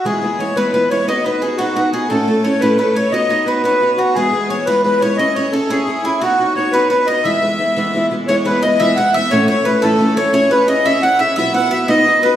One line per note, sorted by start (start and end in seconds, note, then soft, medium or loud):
0.05 0.20 E3 medium
0.05 0.21 G#3 medium
0.05 0.23 B3 medium
0.05 0.23 E4 medium
0.05 0.40 G#4 loud
0.05 0.41 G#4 medium
0.22 0.38 E3 medium
0.22 0.39 G#3 medium
0.22 0.40 B3 medium
0.22 0.40 E4 medium
0.39 0.55 E3 medium
0.39 0.56 G#3 medium
0.39 0.56 B3 medium
0.39 0.57 E4 medium
0.39 0.57 C#5 medium
0.39 0.56 C#5 medium
0.56 0.72 E3 medium
0.56 0.73 G#3 medium
0.56 0.73 B3 medium
0.56 0.74 E4 medium
0.56 0.71 B4 medium
0.56 0.92 B4 medium
0.56 0.73 B4 medium
0.73 0.89 E3 medium
0.73 0.90 G#3 medium
0.73 0.91 B3 medium
0.73 0.91 E4 medium
0.73 0.89 B4 medium
0.73 0.91 B4 medium
0.90 1.07 E3 medium
0.90 1.08 G#3 medium
0.90 1.06 B3 medium
0.90 1.09 E4 medium
0.90 1.06 C#5 medium
0.90 1.09 C#5 medium
0.90 1.07 C#5 medium
1.07 1.23 B3 medium
1.07 1.24 D#4 medium
1.07 1.25 F#4 medium
1.07 1.26 B4 medium
1.07 1.26 D#5 medium
1.07 1.26 D#5 loud
1.07 1.24 D#5 medium
1.24 1.40 B3 medium
1.24 1.41 D#4 medium
1.24 1.43 F#4 medium
1.24 1.42 B4 medium
1.24 1.43 B4 medium
1.24 1.41 B4 medium
1.24 1.43 B4 medium
1.41 1.58 B3 medium
1.41 1.59 D#4 medium
1.41 1.59 F#4 medium
1.41 1.59 G#4 medium
1.41 1.58 G#4 medium
1.41 1.60 B4 medium
1.57 1.74 B3 medium
1.57 1.75 D#4 medium
1.57 1.90 F#4 loud
1.57 1.75 F#4 medium
1.57 1.91 F#4 medium
1.57 1.76 F#4 medium
1.57 1.77 B4 medium
1.75 1.92 B3 medium
1.75 1.93 D#4 medium
1.75 1.92 F#4 medium
1.75 1.94 F#4 medium
1.75 1.94 B4 medium
1.92 2.10 B3 medium
1.92 2.11 D#4 medium
1.92 2.11 F#4 medium
1.92 2.09 G#4 medium
1.92 2.12 G#4 medium
1.92 2.12 B4 medium
2.09 2.27 A2 medium
2.09 2.26 A3 medium
2.09 2.27 C#4 medium
2.09 2.28 E4 medium
2.09 2.45 A4 loud
2.09 2.44 A4 medium
2.09 2.45 A4 medium
2.09 2.28 A4 medium
2.27 2.43 A3 medium
2.27 2.44 C#4 medium
2.27 2.45 E4 medium
2.27 2.46 A4 medium
2.43 2.61 A3 medium
2.43 2.61 C#4 medium
2.43 2.62 E4 medium
2.43 2.62 A4 medium
2.43 2.62 C#5 medium
2.43 2.63 C#5 medium
2.43 2.60 C#5 medium
2.60 2.79 A2 medium
2.60 2.77 A3 medium
2.60 2.78 C#4 medium
2.60 2.79 E4 medium
2.60 2.80 A4 medium
2.60 2.76 B4 loud
2.60 2.78 B4 medium
2.78 2.94 A3 medium
2.78 2.95 C#4 medium
2.78 2.96 E4 medium
2.78 2.97 A4 medium
2.78 2.96 B4 medium
2.78 2.95 B4 medium
2.78 2.97 B4 medium
2.95 3.12 A3 medium
2.95 3.12 C#4 medium
2.95 3.13 E4 medium
2.95 3.14 A4 medium
2.95 3.13 C#5 medium
2.95 3.14 C#5 medium
2.95 3.12 C#5 medium
3.12 3.28 B3 medium
3.12 3.29 D#4 medium
3.12 3.30 F#4 medium
3.12 3.31 C#5 medium
3.12 3.48 D#5 loud
3.12 3.49 D#5 medium
3.12 3.30 D#5 medium
3.29 3.45 B3 medium
3.29 3.46 D#4 medium
3.29 3.47 F#4 medium
3.29 3.46 C#5 medium
3.29 3.48 C#5 medium
3.45 3.63 B3 medium
3.45 3.64 D#4 medium
3.45 3.64 F#4 medium
3.45 3.62 B4 medium
3.45 3.63 B4 medium
3.45 3.64 B4 medium
3.45 3.65 C#5 medium
3.63 3.79 B3 medium
3.63 3.81 D#4 medium
3.63 3.81 F#4 medium
3.63 3.99 B4 loud
3.63 4.00 B4 medium
3.63 3.97 B4 medium
3.63 3.82 C#5 medium
3.80 3.97 B3 medium
3.80 3.98 D#4 medium
3.80 3.99 F#4 medium
3.80 4.00 C#5 medium
3.97 4.15 B3 medium
3.97 4.16 D#4 medium
3.97 4.16 F#4 medium
3.97 4.15 F#4 medium
3.97 4.17 F#4 medium
3.97 4.17 C#5 medium
4.14 4.31 E3 medium
4.14 4.32 G#3 medium
4.14 4.33 B3 medium
4.14 4.34 E4 medium
4.14 4.50 G#4 loud
4.14 4.51 G#4 medium
4.14 4.52 G#4 medium
4.32 4.48 E3 medium
4.32 4.49 G#3 medium
4.32 4.51 B3 medium
4.32 4.51 E4 medium
4.49 4.66 E3 medium
4.49 4.67 G#3 medium
4.49 4.67 B3 medium
4.49 4.68 E4 medium
4.49 4.67 C#5 medium
4.49 4.69 C#5 medium
4.49 4.66 C#5 medium
4.65 4.83 E3 medium
4.65 4.84 G#3 medium
4.65 4.85 B3 medium
4.65 4.86 E4 medium
4.65 4.81 B4 medium
4.65 4.99 B4 medium
4.65 4.84 B4 medium
4.83 5.00 E3 medium
4.83 5.02 G#3 medium
4.83 5.03 B3 medium
4.83 5.01 B4 medium
4.83 5.04 B4 medium
4.87 5.03 E4 medium
5.00 5.18 E3 medium
5.00 5.19 G#3 medium
5.00 5.20 B3 medium
5.00 5.17 C#5 medium
5.00 5.20 C#5 medium
5.00 5.19 C#5 medium
5.05 5.18 E4 medium
5.17 5.35 C#4 medium
5.17 5.36 E4 medium
5.17 5.37 G#4 medium
5.17 5.37 C#5 medium
5.17 5.36 D#5 loud
5.17 5.34 D#5 medium
5.17 5.36 D#5 medium
5.35 5.51 C#4 medium
5.35 5.53 E4 medium
5.35 5.54 G#4 medium
5.35 5.53 C#5 medium
5.35 5.52 C#5 medium
5.39 5.54 C#5 medium
5.52 5.69 C#4 medium
5.52 5.70 E4 medium
5.52 5.70 G#4 medium
5.52 5.70 A4 loud
5.52 5.71 A4 medium
5.52 5.69 A4 medium
5.52 5.71 C#5 medium
5.70 5.86 C#4 medium
5.70 5.87 E4 medium
5.70 6.06 G#4 medium
5.70 6.22 G#4 medium
5.70 6.02 G#4 medium
5.70 5.88 G#4 medium
5.70 5.88 C#5 medium
5.87 6.03 C#4 medium
5.87 6.04 E4 medium
5.87 6.05 G#4 medium
5.87 6.06 C#5 medium
6.04 6.21 C#4 medium
6.04 6.22 E4 loud
6.04 6.21 E4 medium
6.04 6.22 E4 medium
6.04 6.22 G#4 medium
6.04 6.22 C#5 medium
6.21 6.37 B3 medium
6.21 6.38 D#4 medium
6.21 6.57 F#4 medium
6.21 6.54 F#4 loud
6.21 6.70 F#4 medium
6.21 6.39 F#4 medium
6.21 6.40 C#5 medium
6.38 6.54 B3 medium
6.38 6.55 D#4 medium
6.38 6.56 F#4 medium
6.38 6.57 C#5 medium
6.55 6.72 B3 medium
6.55 6.73 D#4 medium
6.55 6.73 F#4 medium
6.55 6.72 C#5 medium
6.55 6.74 C#5 loud
6.55 6.74 C#5 medium
6.72 6.89 B3 medium
6.72 6.90 D#4 medium
6.72 6.91 F#4 medium
6.72 6.88 B4 loud
6.72 6.88 B4 medium
6.72 6.89 B4 medium
6.72 6.92 C#5 medium
6.89 7.06 B3 medium
6.89 7.07 D#4 medium
6.89 7.08 F#4 medium
6.89 7.08 B4 medium
6.89 7.06 B4 medium
6.93 7.09 C#5 medium
7.06 7.24 B3 medium
7.06 7.25 D#4 medium
7.06 7.26 F#4 medium
7.06 7.26 C#5 medium
7.06 7.25 D#5 loud
7.06 7.26 D#5 medium
7.06 7.24 D#5 medium
7.23 7.40 E3 medium
7.23 7.42 G#3 medium
7.23 7.42 B3 medium
7.23 7.43 E4 medium
7.23 8.06 E5 loud
7.23 8.11 E5 medium
7.23 8.07 E5 medium
7.41 7.58 E3 medium
7.41 7.59 G#3 medium
7.41 7.60 B3 medium
7.41 7.60 E4 medium
7.59 7.75 E3 medium
7.59 7.76 G#3 medium
7.59 7.77 B3 medium
7.59 7.78 E4 medium
7.76 7.92 E3 medium
7.76 7.94 G#3 medium
7.76 7.94 B3 medium
7.76 7.95 E4 medium
7.94 8.10 E3 medium
7.94 8.11 G#3 medium
7.94 8.12 B3 medium
7.94 8.12 E4 medium
8.11 8.27 E3 medium
8.11 8.28 G#3 medium
8.11 8.28 B3 medium
8.11 8.29 E4 medium
8.28 8.43 E3 medium
8.28 8.45 G#3 medium
8.28 8.46 B3 medium
8.28 8.46 E4 medium
8.28 8.36 C#5 loud
8.28 8.47 C#5 medium
8.28 8.45 C#5 medium
8.45 8.60 E3 medium
8.45 8.62 G#3 medium
8.45 8.62 B3 medium
8.45 8.63 E4 medium
8.45 8.61 B4 medium
8.45 8.63 B4 medium
8.45 8.63 B4 loud
8.62 8.79 E3 medium
8.62 8.79 G#3 medium
8.62 8.80 B3 medium
8.62 8.81 E4 medium
8.62 8.81 D#5 medium
8.62 8.79 D#5 medium
8.62 8.80 D#5 medium
8.79 8.96 E3 medium
8.79 8.97 G#3 medium
8.79 8.98 B3 medium
8.79 8.98 E4 medium
8.79 8.97 E5 loud
8.79 8.98 E5 loud
8.79 8.96 E5 loud
8.96 9.13 E3 medium
8.96 9.14 G#3 medium
8.96 9.15 B3 medium
8.96 9.14 F#5 loud
8.96 9.14 F#5 medium
8.96 9.13 F#5 medium
9.00 9.16 E4 medium
9.13 9.31 E3 medium
9.13 9.32 G#3 medium
9.13 9.32 B3 medium
9.13 9.31 E5 loud
9.13 9.33 E5 medium
9.13 9.32 E5 loud
9.17 9.32 E4 medium
9.31 9.48 A2 medium
9.31 9.47 E3 medium
9.31 9.48 A3 medium
9.31 9.49 C#4 medium
9.31 9.50 E4 medium
9.31 9.48 C#5 loud
9.31 9.46 C#5 loud
9.31 9.47 C#5 medium
9.48 9.64 E3 medium
9.48 9.65 A3 medium
9.48 9.66 C#4 medium
9.48 9.67 E4 medium
9.48 9.66 C#5 loud
9.48 9.64 C#5 medium
9.48 9.67 C#5 medium
9.65 9.82 E3 medium
9.65 9.82 A3 medium
9.65 9.83 C#4 medium
9.65 9.83 E4 medium
9.65 9.83 B4 loud
9.65 9.81 B4 medium
9.65 9.85 B4 medium
9.82 10.00 A2 medium
9.82 9.98 E3 medium
9.82 9.99 A3 medium
9.82 10.00 C#4 medium
9.82 10.01 E4 medium
9.82 10.14 A4 loud
9.82 9.94 A4 medium
9.94 10.04 A4 medium
9.99 10.15 E3 medium
9.99 10.16 A3 medium
9.99 10.17 C#4 medium
9.99 10.18 E4 medium
10.05 10.19 A4 medium
10.16 10.33 E3 medium
10.16 10.33 A3 medium
10.16 10.32 C#4 medium
10.16 10.33 E4 medium
10.16 10.33 C#5 medium
10.16 10.32 C#5 loud
10.16 10.34 C#5 medium
10.33 10.49 C#4 medium
10.33 10.50 E4 medium
10.33 10.51 G#4 medium
10.33 10.51 C#5 loud
10.33 10.50 C#5 medium
10.33 10.54 C#5 medium
10.33 10.52 C#5 medium
10.51 10.66 C#4 medium
10.51 10.67 E4 medium
10.51 10.68 G#4 medium
10.51 10.67 B4 medium
10.51 10.70 B4 medium
10.51 10.69 C#5 medium
10.67 10.84 C#4 medium
10.67 10.84 E4 medium
10.67 10.85 G#4 medium
10.67 10.86 C#5 medium
10.67 10.86 D#5 medium
10.67 10.87 D#5 medium
10.85 11.00 C#4 medium
10.85 11.02 E4 medium
10.85 11.02 G#4 medium
10.85 11.04 C#5 loud
10.85 11.03 E5 loud
10.85 11.03 E5 medium
10.85 11.04 E5 medium
11.01 11.18 C#4 medium
11.01 11.19 E4 medium
11.01 11.20 G#4 medium
11.01 11.21 C#5 medium
11.01 11.20 F#5 loud
11.01 11.21 F#5 medium
11.01 11.19 F#5 medium
11.19 11.37 C#4 medium
11.19 11.37 E4 medium
11.19 11.38 G#4 medium
11.19 11.38 C#5 medium
11.19 11.35 E5 medium
11.19 11.37 E5 medium
11.19 11.36 E5 loud
11.36 11.54 B2 medium
11.36 11.55 F#3 medium
11.36 11.53 B3 medium
11.36 11.54 E4 medium
11.36 11.55 F#4 medium
11.36 11.55 B4 medium
11.36 11.53 E5 medium
11.36 11.53 E5 loud
11.36 11.54 E5 loud
11.54 11.70 B3 medium
11.54 11.71 E4 medium
11.54 11.71 F#4 medium
11.54 11.73 B4 medium
11.54 11.70 F#5 medium
11.54 11.87 F#5 loud
11.54 11.72 F#5 loud
11.71 11.87 B3 medium
11.71 11.89 E4 medium
11.71 11.88 F#4 medium
11.71 11.89 B4 medium
11.71 11.89 E5 medium
11.71 11.90 E5 loud
11.88 12.04 B3 medium
11.88 12.06 D#4 medium
11.88 12.07 F#4 medium
11.88 12.07 B4 loud
11.88 12.22 D#5 medium
11.88 12.21 D#5 loud
11.88 12.24 D#5 loud
12.06 12.22 B3 medium
12.06 12.23 D#4 medium
12.06 12.24 F#4 medium
12.06 12.24 B4 medium
12.23 12.36 B3 medium
12.23 12.36 D#4 medium
12.23 12.36 F#4 medium
12.23 12.36 B4 medium